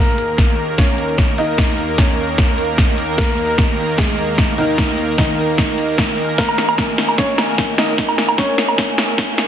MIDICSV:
0, 0, Header, 1, 6, 480
1, 0, Start_track
1, 0, Tempo, 400000
1, 1898, Time_signature, 4, 2, 24, 8
1, 11371, End_track
2, 0, Start_track
2, 0, Title_t, "Ambient pad"
2, 0, Program_c, 0, 92
2, 0, Note_on_c, 0, 70, 74
2, 85, Note_on_c, 0, 82, 72
2, 335, Note_on_c, 0, 75, 75
2, 7108, Note_on_c, 0, 80, 73
2, 7252, Note_off_c, 0, 82, 0
2, 11371, Note_off_c, 0, 70, 0
2, 11371, Note_off_c, 0, 75, 0
2, 11371, Note_off_c, 0, 80, 0
2, 11371, End_track
3, 0, Start_track
3, 0, Title_t, "Felt piano"
3, 0, Program_c, 1, 0
3, 0, Note_on_c, 1, 58, 72
3, 0, Note_on_c, 1, 70, 91
3, 848, Note_off_c, 1, 58, 0
3, 848, Note_off_c, 1, 70, 0
3, 938, Note_on_c, 1, 61, 72
3, 939, Note_on_c, 1, 73, 87
3, 1567, Note_off_c, 1, 61, 0
3, 1567, Note_off_c, 1, 73, 0
3, 1660, Note_on_c, 1, 63, 74
3, 1660, Note_on_c, 1, 75, 88
3, 2287, Note_off_c, 1, 63, 0
3, 2287, Note_off_c, 1, 75, 0
3, 2378, Note_on_c, 1, 61, 70
3, 2378, Note_on_c, 1, 73, 85
3, 3726, Note_off_c, 1, 61, 0
3, 3726, Note_off_c, 1, 73, 0
3, 3819, Note_on_c, 1, 70, 94
3, 3820, Note_on_c, 1, 58, 73
3, 4687, Note_off_c, 1, 58, 0
3, 4687, Note_off_c, 1, 70, 0
3, 4779, Note_on_c, 1, 56, 74
3, 4779, Note_on_c, 1, 68, 90
3, 5407, Note_off_c, 1, 56, 0
3, 5407, Note_off_c, 1, 68, 0
3, 5499, Note_on_c, 1, 51, 76
3, 5499, Note_on_c, 1, 63, 90
3, 6127, Note_off_c, 1, 51, 0
3, 6127, Note_off_c, 1, 63, 0
3, 6219, Note_on_c, 1, 51, 70
3, 6219, Note_on_c, 1, 63, 88
3, 7567, Note_off_c, 1, 51, 0
3, 7567, Note_off_c, 1, 63, 0
3, 7660, Note_on_c, 1, 58, 70
3, 7660, Note_on_c, 1, 70, 95
3, 8527, Note_off_c, 1, 58, 0
3, 8527, Note_off_c, 1, 70, 0
3, 8619, Note_on_c, 1, 61, 73
3, 8620, Note_on_c, 1, 73, 92
3, 9247, Note_off_c, 1, 61, 0
3, 9247, Note_off_c, 1, 73, 0
3, 9339, Note_on_c, 1, 75, 93
3, 9340, Note_on_c, 1, 63, 74
3, 9967, Note_off_c, 1, 63, 0
3, 9967, Note_off_c, 1, 75, 0
3, 10058, Note_on_c, 1, 61, 74
3, 10058, Note_on_c, 1, 73, 89
3, 11371, Note_off_c, 1, 61, 0
3, 11371, Note_off_c, 1, 73, 0
3, 11371, End_track
4, 0, Start_track
4, 0, Title_t, "Supersaw synth"
4, 0, Program_c, 2, 81
4, 0, Note_on_c, 2, 39, 80
4, 0, Note_on_c, 2, 51, 73
4, 0, Note_on_c, 2, 58, 75
4, 0, Note_on_c, 2, 70, 89
4, 11371, Note_off_c, 2, 39, 0
4, 11371, Note_off_c, 2, 51, 0
4, 11371, Note_off_c, 2, 58, 0
4, 11371, Note_off_c, 2, 70, 0
4, 11371, End_track
5, 0, Start_track
5, 0, Title_t, "Riser"
5, 0, Program_c, 3, 103
5, 7659, Note_on_c, 3, 60, 79
5, 11371, Note_off_c, 3, 60, 0
5, 11371, End_track
6, 0, Start_track
6, 0, Title_t, "Drums"
6, 218, Note_on_c, 9, 42, 52
6, 338, Note_off_c, 9, 42, 0
6, 458, Note_on_c, 9, 38, 45
6, 458, Note_on_c, 9, 42, 75
6, 459, Note_on_c, 9, 36, 96
6, 578, Note_off_c, 9, 38, 0
6, 578, Note_off_c, 9, 42, 0
6, 579, Note_off_c, 9, 36, 0
6, 939, Note_on_c, 9, 36, 87
6, 939, Note_on_c, 9, 38, 47
6, 939, Note_on_c, 9, 42, 81
6, 1059, Note_off_c, 9, 36, 0
6, 1059, Note_off_c, 9, 38, 0
6, 1059, Note_off_c, 9, 42, 0
6, 1179, Note_on_c, 9, 42, 54
6, 1299, Note_off_c, 9, 42, 0
6, 1419, Note_on_c, 9, 36, 91
6, 1419, Note_on_c, 9, 38, 47
6, 1419, Note_on_c, 9, 42, 76
6, 1539, Note_off_c, 9, 36, 0
6, 1539, Note_off_c, 9, 38, 0
6, 1539, Note_off_c, 9, 42, 0
6, 1658, Note_on_c, 9, 42, 51
6, 1778, Note_off_c, 9, 42, 0
6, 1898, Note_on_c, 9, 38, 50
6, 1898, Note_on_c, 9, 42, 77
6, 1899, Note_on_c, 9, 36, 86
6, 2018, Note_off_c, 9, 38, 0
6, 2018, Note_off_c, 9, 42, 0
6, 2019, Note_off_c, 9, 36, 0
6, 2139, Note_on_c, 9, 42, 51
6, 2259, Note_off_c, 9, 42, 0
6, 2378, Note_on_c, 9, 36, 99
6, 2378, Note_on_c, 9, 38, 53
6, 2378, Note_on_c, 9, 42, 74
6, 2498, Note_off_c, 9, 36, 0
6, 2498, Note_off_c, 9, 38, 0
6, 2498, Note_off_c, 9, 42, 0
6, 2858, Note_on_c, 9, 36, 88
6, 2858, Note_on_c, 9, 38, 54
6, 2858, Note_on_c, 9, 42, 76
6, 2978, Note_off_c, 9, 36, 0
6, 2978, Note_off_c, 9, 38, 0
6, 2978, Note_off_c, 9, 42, 0
6, 3098, Note_on_c, 9, 42, 51
6, 3218, Note_off_c, 9, 42, 0
6, 3337, Note_on_c, 9, 38, 55
6, 3337, Note_on_c, 9, 42, 75
6, 3338, Note_on_c, 9, 36, 91
6, 3457, Note_off_c, 9, 38, 0
6, 3457, Note_off_c, 9, 42, 0
6, 3458, Note_off_c, 9, 36, 0
6, 3577, Note_on_c, 9, 42, 50
6, 3697, Note_off_c, 9, 42, 0
6, 3817, Note_on_c, 9, 38, 56
6, 3817, Note_on_c, 9, 42, 76
6, 3818, Note_on_c, 9, 36, 90
6, 3937, Note_off_c, 9, 38, 0
6, 3937, Note_off_c, 9, 42, 0
6, 3938, Note_off_c, 9, 36, 0
6, 4057, Note_on_c, 9, 42, 50
6, 4177, Note_off_c, 9, 42, 0
6, 4298, Note_on_c, 9, 36, 98
6, 4298, Note_on_c, 9, 38, 57
6, 4298, Note_on_c, 9, 42, 73
6, 4418, Note_off_c, 9, 36, 0
6, 4418, Note_off_c, 9, 38, 0
6, 4418, Note_off_c, 9, 42, 0
6, 4778, Note_on_c, 9, 36, 90
6, 4778, Note_on_c, 9, 38, 62
6, 4778, Note_on_c, 9, 42, 75
6, 4898, Note_off_c, 9, 36, 0
6, 4898, Note_off_c, 9, 38, 0
6, 4898, Note_off_c, 9, 42, 0
6, 5018, Note_on_c, 9, 42, 50
6, 5138, Note_off_c, 9, 42, 0
6, 5257, Note_on_c, 9, 38, 59
6, 5257, Note_on_c, 9, 42, 71
6, 5258, Note_on_c, 9, 36, 93
6, 5377, Note_off_c, 9, 38, 0
6, 5377, Note_off_c, 9, 42, 0
6, 5378, Note_off_c, 9, 36, 0
6, 5498, Note_on_c, 9, 42, 51
6, 5618, Note_off_c, 9, 42, 0
6, 5737, Note_on_c, 9, 38, 65
6, 5737, Note_on_c, 9, 42, 72
6, 5738, Note_on_c, 9, 36, 89
6, 5857, Note_off_c, 9, 38, 0
6, 5857, Note_off_c, 9, 42, 0
6, 5858, Note_off_c, 9, 36, 0
6, 5977, Note_on_c, 9, 42, 47
6, 6097, Note_off_c, 9, 42, 0
6, 6218, Note_on_c, 9, 36, 97
6, 6218, Note_on_c, 9, 38, 64
6, 6218, Note_on_c, 9, 42, 73
6, 6338, Note_off_c, 9, 36, 0
6, 6338, Note_off_c, 9, 38, 0
6, 6338, Note_off_c, 9, 42, 0
6, 6698, Note_on_c, 9, 36, 94
6, 6698, Note_on_c, 9, 38, 69
6, 6698, Note_on_c, 9, 42, 72
6, 6818, Note_off_c, 9, 36, 0
6, 6818, Note_off_c, 9, 38, 0
6, 6818, Note_off_c, 9, 42, 0
6, 6938, Note_on_c, 9, 42, 49
6, 7058, Note_off_c, 9, 42, 0
6, 7178, Note_on_c, 9, 38, 68
6, 7178, Note_on_c, 9, 42, 69
6, 7179, Note_on_c, 9, 36, 91
6, 7298, Note_off_c, 9, 38, 0
6, 7298, Note_off_c, 9, 42, 0
6, 7299, Note_off_c, 9, 36, 0
6, 7418, Note_on_c, 9, 42, 48
6, 7538, Note_off_c, 9, 42, 0
6, 7659, Note_on_c, 9, 36, 93
6, 7659, Note_on_c, 9, 38, 74
6, 7659, Note_on_c, 9, 42, 73
6, 7779, Note_off_c, 9, 36, 0
6, 7779, Note_off_c, 9, 38, 0
6, 7779, Note_off_c, 9, 42, 0
6, 7783, Note_on_c, 9, 77, 53
6, 7898, Note_on_c, 9, 38, 70
6, 7898, Note_on_c, 9, 42, 50
6, 7903, Note_off_c, 9, 77, 0
6, 8018, Note_off_c, 9, 38, 0
6, 8018, Note_off_c, 9, 42, 0
6, 8023, Note_on_c, 9, 77, 79
6, 8138, Note_on_c, 9, 36, 98
6, 8138, Note_on_c, 9, 38, 74
6, 8138, Note_on_c, 9, 42, 74
6, 8143, Note_off_c, 9, 77, 0
6, 8258, Note_off_c, 9, 36, 0
6, 8258, Note_off_c, 9, 38, 0
6, 8258, Note_off_c, 9, 42, 0
6, 8378, Note_on_c, 9, 38, 77
6, 8498, Note_off_c, 9, 38, 0
6, 8503, Note_on_c, 9, 77, 51
6, 8618, Note_on_c, 9, 38, 77
6, 8618, Note_on_c, 9, 42, 72
6, 8619, Note_on_c, 9, 36, 90
6, 8623, Note_off_c, 9, 77, 0
6, 8738, Note_off_c, 9, 38, 0
6, 8738, Note_off_c, 9, 42, 0
6, 8739, Note_off_c, 9, 36, 0
6, 8858, Note_on_c, 9, 38, 79
6, 8858, Note_on_c, 9, 42, 50
6, 8858, Note_on_c, 9, 77, 50
6, 8978, Note_off_c, 9, 38, 0
6, 8978, Note_off_c, 9, 42, 0
6, 8978, Note_off_c, 9, 77, 0
6, 9098, Note_on_c, 9, 36, 98
6, 9099, Note_on_c, 9, 38, 76
6, 9099, Note_on_c, 9, 42, 72
6, 9218, Note_off_c, 9, 36, 0
6, 9219, Note_off_c, 9, 38, 0
6, 9219, Note_off_c, 9, 42, 0
6, 9338, Note_on_c, 9, 38, 78
6, 9338, Note_on_c, 9, 42, 50
6, 9458, Note_off_c, 9, 38, 0
6, 9458, Note_off_c, 9, 42, 0
6, 9578, Note_on_c, 9, 36, 97
6, 9578, Note_on_c, 9, 38, 81
6, 9578, Note_on_c, 9, 42, 78
6, 9698, Note_off_c, 9, 36, 0
6, 9698, Note_off_c, 9, 38, 0
6, 9698, Note_off_c, 9, 42, 0
6, 9703, Note_on_c, 9, 77, 54
6, 9818, Note_on_c, 9, 38, 79
6, 9818, Note_on_c, 9, 42, 52
6, 9823, Note_off_c, 9, 77, 0
6, 9938, Note_off_c, 9, 38, 0
6, 9938, Note_off_c, 9, 42, 0
6, 9943, Note_on_c, 9, 77, 78
6, 10057, Note_on_c, 9, 38, 80
6, 10057, Note_on_c, 9, 42, 77
6, 10058, Note_on_c, 9, 36, 98
6, 10063, Note_off_c, 9, 77, 0
6, 10177, Note_off_c, 9, 38, 0
6, 10177, Note_off_c, 9, 42, 0
6, 10178, Note_off_c, 9, 36, 0
6, 10297, Note_on_c, 9, 38, 86
6, 10417, Note_off_c, 9, 38, 0
6, 10422, Note_on_c, 9, 77, 53
6, 10538, Note_on_c, 9, 36, 92
6, 10538, Note_on_c, 9, 38, 89
6, 10538, Note_on_c, 9, 42, 77
6, 10542, Note_off_c, 9, 77, 0
6, 10658, Note_off_c, 9, 36, 0
6, 10658, Note_off_c, 9, 38, 0
6, 10658, Note_off_c, 9, 42, 0
6, 10777, Note_on_c, 9, 38, 89
6, 10777, Note_on_c, 9, 42, 52
6, 10897, Note_off_c, 9, 38, 0
6, 10897, Note_off_c, 9, 42, 0
6, 11017, Note_on_c, 9, 38, 87
6, 11017, Note_on_c, 9, 42, 75
6, 11018, Note_on_c, 9, 36, 96
6, 11137, Note_off_c, 9, 38, 0
6, 11137, Note_off_c, 9, 42, 0
6, 11138, Note_off_c, 9, 36, 0
6, 11257, Note_on_c, 9, 38, 89
6, 11257, Note_on_c, 9, 42, 52
6, 11371, Note_off_c, 9, 38, 0
6, 11371, Note_off_c, 9, 42, 0
6, 11371, End_track
0, 0, End_of_file